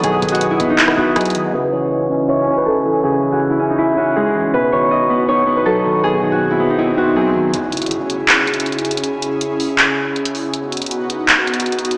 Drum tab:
HH |x-----------x---x---x---x-----------x-----------x-----------------------x--x--x--x--x-----------|------------------------------------------------------------------------------------------------|------------------------------------------------------------------------------------------------|------------------------------------------------------------------------------------------------|
CP |------------------------------------------------x-----------------------------------------------|------------------------------------------------------------------------------------------------|------------------------------------------------------------------------------------------------|------------------------------------------------------------------------------------------------|
SD |------------------------------------------------------r-----------------r-----------------------|------------------------------------------------------------------------------------------------|------------------------------------------------------------------------------------------------|------------------------------------------------------------------------------------------------|

HH |------------------------------------------------------------------------------------------------|x-----------x--x--x--x--x-----------x-----------x-----------x---x---x---x---x---x---x---x---x---|x-----------x-----------x-----------o-----------x-----------------------x-----x-----o-----------|x-----------x--x--x--x--x-----------x-----------x-----------x---x---x---x---x---x---x---x-------|
CP |------------------------------------------------------------------------------------------------|------------------------------------------------x-----------------------------------------------|------------------------------------------------x-----------------------------------------------|------------------------------------------------x-----------------------------------------------|
SD |------------------------------------------------------------------------------------------------|------------------------------------------------------------------------------------------------|------------------------------------------------------------------------------------------------|------------------------------------------------------------------------------------------------|